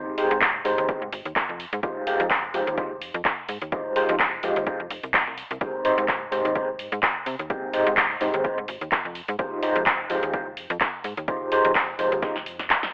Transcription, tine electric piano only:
0.00 0.15 G#3 medium
0.00 0.15 C4 medium
0.00 0.15 D#4 medium
0.00 0.15 G4 medium
0.00 0.16 C5 medium
0.17 0.36 G#3 medium
0.17 0.36 C4 medium
0.17 0.36 D#4 medium
0.17 0.37 G4 medium
0.17 0.37 C5 medium
0.65 0.86 G#3 medium
0.65 0.86 C4 medium
0.65 0.86 D#4 medium
0.65 0.86 G4 medium
0.65 0.86 C5 medium
0.89 1.01 G#3 medium
0.89 1.01 C4 medium
0.89 1.01 D#4 medium
0.89 1.01 G4 medium
0.89 1.02 C5 medium
1.83 2.04 G#3 medium
1.83 2.04 D#4 medium
1.83 2.04 F4 medium
1.83 2.04 G4 medium
1.83 2.05 C5 medium
2.07 2.25 G#3 medium
2.07 2.25 D#4 medium
2.07 2.26 F4 medium
2.07 2.26 G4 medium
2.07 2.26 C5 medium
2.54 2.75 G#3 medium
2.54 2.75 D#4 medium
2.54 2.75 F4 medium
2.54 2.75 G4 medium
2.54 2.75 C5 medium
2.78 2.90 G#3 medium
2.78 2.90 D#4 medium
2.78 2.90 F4 medium
2.78 2.90 G4 medium
2.78 2.91 C5 medium
3.72 3.93 G#3 medium
3.72 3.93 D#4 medium
3.72 3.93 F4 medium
3.72 3.93 G4 medium
3.72 3.94 C5 medium
3.96 4.14 G#3 medium
3.96 4.15 D#4 medium
3.96 4.15 F4 medium
3.96 4.15 G4 medium
3.96 4.15 C5 medium
4.43 4.64 G#3 medium
4.43 4.64 D#4 medium
4.43 4.64 F4 medium
4.43 4.64 G4 medium
4.43 4.65 C5 medium
4.67 4.79 G#3 medium
4.67 4.79 D#4 medium
4.67 4.79 F4 medium
4.67 4.79 G4 medium
4.67 4.79 C5 medium
5.61 5.82 G#3 medium
5.61 5.82 C4 medium
5.61 5.82 D#4 medium
5.61 5.82 G4 medium
5.61 5.82 C5 medium
5.84 6.03 G#3 medium
5.84 6.03 C4 medium
5.84 6.03 D#4 medium
5.84 6.04 G4 medium
5.84 6.04 C5 medium
6.31 6.53 G#3 medium
6.31 6.53 C4 medium
6.31 6.53 D#4 medium
6.31 6.53 G4 medium
6.31 6.53 C5 medium
6.55 6.68 G#3 medium
6.55 6.68 C4 medium
6.55 6.68 D#4 medium
6.55 6.68 G4 medium
6.55 6.68 C5 medium
7.50 7.71 G#3 medium
7.50 7.71 C4 medium
7.50 7.71 D#4 medium
7.50 7.71 G4 medium
7.50 7.71 C5 medium
7.73 7.92 G#3 medium
7.73 7.92 C4 medium
7.73 7.92 D#4 medium
7.73 7.92 G4 medium
7.73 7.93 C5 medium
8.20 8.42 G#3 medium
8.20 8.42 C4 medium
8.20 8.42 D#4 medium
8.20 8.42 G4 medium
8.20 8.42 C5 medium
8.44 8.57 G#3 medium
8.44 8.57 C4 medium
8.44 8.57 D#4 medium
8.44 8.57 G4 medium
8.44 8.57 C5 medium
9.38 9.60 G#3 medium
9.38 9.60 D#4 medium
9.38 9.60 F4 medium
9.38 9.60 G4 medium
9.38 9.60 C5 medium
9.63 9.81 G#3 medium
9.63 9.81 D#4 medium
9.63 9.82 F4 medium
9.63 9.82 G4 medium
9.63 9.82 C5 medium
10.10 10.31 G#3 medium
10.10 10.31 D#4 medium
10.10 10.31 F4 medium
10.10 10.31 G4 medium
10.10 10.31 C5 medium
10.33 10.46 G#3 medium
10.33 10.46 D#4 medium
10.33 10.46 F4 medium
10.33 10.46 G4 medium
10.33 10.46 C5 medium
11.28 11.49 G#3 medium
11.28 11.49 D#4 medium
11.28 11.49 F4 medium
11.28 11.49 G4 medium
11.28 11.49 C5 medium
11.52 11.70 G#3 medium
11.52 11.71 D#4 medium
11.52 11.71 F4 medium
11.52 11.71 G4 medium
11.52 11.71 C5 medium
11.99 12.20 G#3 medium
11.99 12.20 D#4 medium
11.99 12.20 F4 medium
11.99 12.20 G4 medium
11.99 12.20 C5 medium
12.22 12.35 G#3 medium
12.22 12.35 D#4 medium
12.22 12.35 F4 medium
12.22 12.35 G4 medium
12.22 12.35 C5 medium

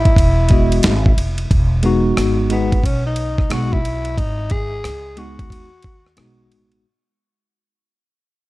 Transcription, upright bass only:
0.00 0.14 A1 medium
0.16 0.80 E1 loud
0.84 1.16 G#1 loud
1.17 1.49 F1 medium
1.51 2.14 E1 loud
2.17 2.81 G#1 medium
2.83 3.47 B1 medium
3.51 4.14 B1 medium
4.17 4.81 G#1 loud
4.84 5.47 C#2 medium
5.50 6.14 D#2 medium
6.17 6.51 B1 medium
6.51 6.83 A1 medium

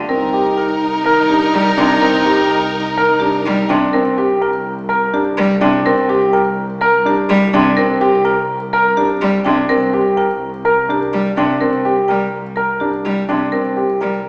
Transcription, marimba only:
0.00 0.17 G5 medium
0.09 0.40 A#4 medium
0.58 0.89 G5 medium
1.04 1.36 A#4 medium
1.29 1.61 G4 medium
1.78 2.09 G5 medium
2.02 2.33 A#4 medium
2.50 2.81 G5 medium
2.98 3.29 A#4 medium
3.20 3.52 G4 medium
3.69 4.00 G5 medium
3.93 4.25 A#4 medium
4.42 4.73 G5 medium
4.90 5.21 A#4 medium
5.14 5.45 G4 medium
5.61 5.93 G5 medium
5.86 6.17 A#4 medium
6.33 6.65 G5 medium
6.81 7.12 A#4 medium
7.06 7.37 G4 medium
7.55 7.85 G5 medium
7.77 8.08 A#4 medium
8.25 8.57 G5 medium
8.73 9.05 A#4 medium
8.97 9.29 G4 medium
9.45 9.76 G5 medium
9.69 10.01 A#4 medium
10.17 10.49 G5 medium
10.65 10.97 A#4 medium
10.90 11.21 G4 medium
11.38 11.69 G5 medium
11.61 11.92 A#4 medium
12.08 12.40 G5 medium
12.56 12.88 A#4 medium
12.80 13.12 G4 medium
13.29 13.60 G5 soft
13.52 13.84 A#4 medium
14.01 14.29 G5 soft

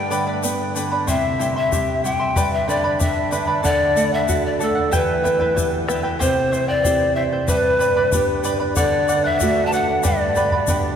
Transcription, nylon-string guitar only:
0.00 1.04 G2 medium
0.11 0.43 D3 medium
0.44 0.75 B3 medium
0.75 1.07 D3 medium
1.08 2.32 C3 medium
1.40 1.71 G3 medium
1.72 2.03 G4 medium
2.05 2.36 G3 medium
2.37 3.61 G2 medium
2.68 2.99 D3 medium
3.01 3.32 D4 medium
3.32 3.63 D3 medium
3.64 4.88 D3 medium
3.96 4.27 A3 medium
4.29 4.60 F#4 medium
4.61 4.92 A3 medium
4.93 6.17 E3 medium
5.25 5.56 B3 medium
5.57 5.88 G4 medium
5.89 6.20 B3 medium
6.20 7.45 C3 medium
6.85 7.47 C4 soft
6.85 7.47 E4 soft
6.85 7.48 G4 medium
7.50 8.74 G2 medium
8.14 8.76 B3 medium
8.14 8.75 D4 soft
8.14 8.76 G4 medium
8.79 10.02 D3 medium
9.42 10.03 A3 medium
9.42 10.03 D4 soft
9.42 10.04 F#4 medium
10.05 10.96 G2 medium
10.69 10.96 B3 soft
10.69 10.96 D4 soft
10.69 10.96 G4 medium

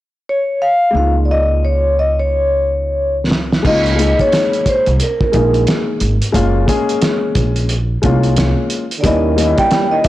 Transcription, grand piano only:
0.91 3.58 G#3 medium
0.91 3.59 A#3 soft
0.95 3.61 D#4 soft
0.95 3.62 F4 medium
3.63 3.91 G#3 medium
3.63 3.91 A#3 medium
3.63 3.92 D#4 medium
3.63 3.93 F4 medium
3.96 5.00 G#3 medium
3.96 5.01 A#3 medium
3.96 5.01 D#4 medium
3.96 5.02 G#4 medium
5.32 6.12 G#3 medium
5.32 6.12 A#3 medium
5.32 6.13 D#4 medium
5.32 6.13 G#4 medium
6.32 6.61 G#3 medium
6.32 6.61 A#3 medium
6.32 6.62 C#4 medium
6.32 6.62 F4 medium
6.66 7.70 G#3 medium
6.66 7.70 A#3 medium
6.66 7.71 C#4 medium
6.66 7.71 G#4 medium
8.02 8.81 G#3 medium
8.02 8.82 A#3 medium
8.02 8.83 C#4 medium
8.02 8.83 F4 medium
9.03 9.31 G3 medium
9.03 9.31 A#3 medium
9.03 9.32 C#4 medium
9.03 9.32 E4 medium
9.36 10.08 G3 medium
9.36 10.08 A#3 medium
9.36 10.08 C#4 medium
9.36 9.46 D#4 medium
9.46 10.08 E4 medium

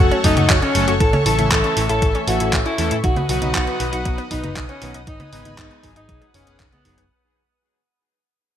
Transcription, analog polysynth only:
0.00 0.21 F#3 medium
0.00 0.21 A3 medium
0.00 0.21 C#4 medium
0.00 0.21 A4 medium
0.24 0.54 F#3 medium
0.24 0.54 A3 medium
0.24 0.54 C#4 medium
0.24 0.54 A4 loud
0.75 0.94 F#3 loud
0.75 0.94 A3 medium
0.75 0.94 C#4 medium
0.75 0.94 A4 loud
1.26 1.74 E3 medium
1.26 1.74 A3 medium
1.26 1.74 C#4 medium
1.26 1.74 A4 loud
1.77 2.25 E3 medium
1.77 2.25 A3 medium
1.77 2.25 C#4 medium
1.77 2.25 A4 medium
2.28 2.58 E3 medium
2.28 2.58 A3 medium
2.28 2.58 C#4 medium
2.28 2.58 A4 loud
2.78 2.97 E3 loud
2.78 2.97 A3 medium
2.78 2.97 C#4 medium
2.78 2.97 A4 loud
3.29 3.77 F#3 medium
3.29 3.77 B3 medium
3.29 3.77 D#4 medium
3.29 3.77 B4 loud
3.80 4.28 F#3 medium
3.80 4.28 B3 medium
3.80 4.28 D#4 medium
3.80 4.28 B4 medium
4.31 4.61 F#3 medium
4.31 4.61 B3 medium
4.31 4.61 D#4 medium
4.31 4.61 B4 loud
4.82 5.01 F#3 loud
4.82 5.01 B3 medium
4.82 5.01 D#4 medium
4.82 5.01 B4 loud
5.33 5.80 G#3 medium
5.33 5.80 B3 medium
5.33 5.80 D#4 medium
5.33 5.80 B4 loud
5.84 6.31 F#3 medium
5.84 6.31 B3 medium
5.84 6.31 D#4 medium
5.84 6.31 G#4 medium
6.34 6.65 F#3 medium
6.34 6.65 B3 medium
6.34 6.65 D#4 medium
6.34 6.65 G#4 loud
6.85 7.04 F#3 loud
6.85 7.04 B3 medium
6.85 7.04 D#4 medium
6.85 7.04 G#4 loud

